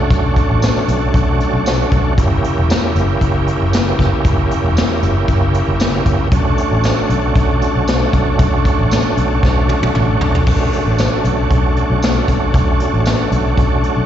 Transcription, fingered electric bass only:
0.11 B1
0.50 A1
0.88 B1
1.14 B1
1.53 B1
1.92 B1
2.05 muted fingered electric bass stroke
2.18 F#1
2.57 E1
2.95 F#1
3.21 F#1
3.60 F#1
3.99 F#1
4.13 muted fingered electric bass stroke
4.25 F#1
4.64 E1
5.03 F#1
5.28 F#1
5.68 F#1
6.06 F#1
6.20 muted fingered electric bass stroke
6.32 B1
6.71 A1
7.10 B1
7.36 B1
7.76 B1
8.13 B1
8.27 muted fingered electric bass stroke
8.39 B1
8.79 A1
9.17 B1
9.43 B1
9.83 B1
9.95 A1
10.21 B1
10.47 B1
10.86 A1
11.24 B1
11.50 B1
11.90 B1
12.28 B1
12.42 muted fingered electric bass stroke
12.54 B1
12.94 A1
13.31 B1
13.57 B1
13.97 B1

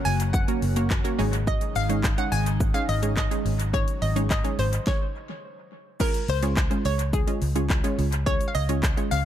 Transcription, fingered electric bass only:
0.06 F#1
0.62 F#1
1.19 G#1
1.76 G#1
2.32 G#1
2.89 G#1
3.45 G#1
4.02 G#1
4.59 G#1
6.29 C#2
6.85 C#2
7.42 C#2
7.99 C#2
8.55 C#2
9.12 C#2

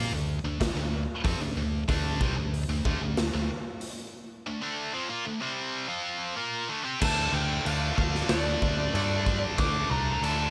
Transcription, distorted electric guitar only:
Already playing: A#3 F4
0.13 D3 A3
0.45 D3 A3
0.60 D3 A3
0.77 D3 A3
1.24 F3 C4
1.41 D3 A3
1.57 D3 A3
1.89 D3 A3 D4
2.21 C3 G3
2.37 D3 A3
2.70 D3 A3
2.86 D3 A3
3.02 D3 A3
3.34 D3 A3
4.47 D3 A3
4.62 D3 A3 D4
4.93 F3 C4
5.09 A#3 F4
5.25 D3 A3
5.41 C3 G3 C4
5.88 F3 C4 F4
6.36 A#3 F4 A#4
6.68 D3 A3
6.84 C4 G4
7.00 D3 A3 D4
7.32 D3 A3 D4
7.65 D3 A3 D4
7.96 D3 A3 D4
8.29 D3 A3 D4
8.62 D3 A3 D4
8.94 D3 A3 D4
9.25 D3 A3 D4
9.58 D3 A3 D4
9.90 D3 A3 D4
10.23 D3 A3 D4

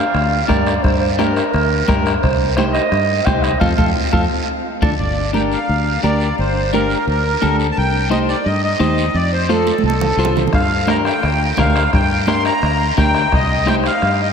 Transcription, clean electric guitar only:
0.48 D4 G4 A#4
1.19 D4 G4 A#4
1.88 D4 G4 A#4
2.58 D#4 G4 C5
3.27 D#4 G4 C5
3.61 C4 F4 A4
3.77 C4 F4 A4
4.13 C4 F4 A4
4.82 D4 F4 A4
5.33 D4 G4 A#4
6.03 D4 G4 A#4
6.73 D4 G4 A#4
7.42 D4 G4 A4
8.10 D#4 G4 C5
8.80 D#4 G4 C5
9.49 F4 A4 C5
10.19 F4 A4 C5
10.87 D4 G4 A#4
11.58 D4 G4 A#4
12.28 D4 G4 A#4
12.97 D4 G4 A#4
13.66 D#4 G4 C5

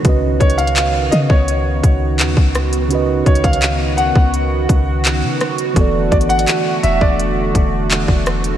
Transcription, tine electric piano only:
0.02 C#3 C#4 F#4
0.07 B4 D#5
2.88 C#3 C#4 F#4
2.93 B4 D#5
5.74 E3 B3 F#4
5.79 A4 D5

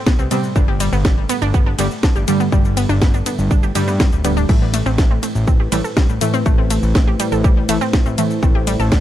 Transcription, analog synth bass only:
0.19 C2
0.56 G1
0.93 G1
1.42 G1
1.79 G1
2.16 G1
2.52 G1
2.89 G1
3.39 G1
3.75 G2
4.12 D1
4.49 A1
4.86 A1
5.35 A1
5.72 A1
6.09 A1
6.46 A1
6.83 A1
7.32 A1
7.69 A1
8.06 A1
8.43 A1
8.80 A1

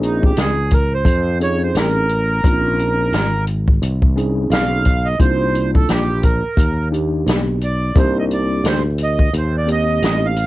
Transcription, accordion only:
0.04 D#4
0.24 G4
0.40 G#4
0.73 A#4
0.94 C5
1.43 C#5
1.63 C5
1.78 A#4
4.52 F5
5.05 D#5
5.20 C5
5.75 A4
5.89 G4
6.23 A#4
7.64 D5
7.98 C5
8.19 D#5
8.34 D5
8.68 C5
9.03 D#5
9.38 C5
9.58 D5
9.72 D#5
10.26 F5

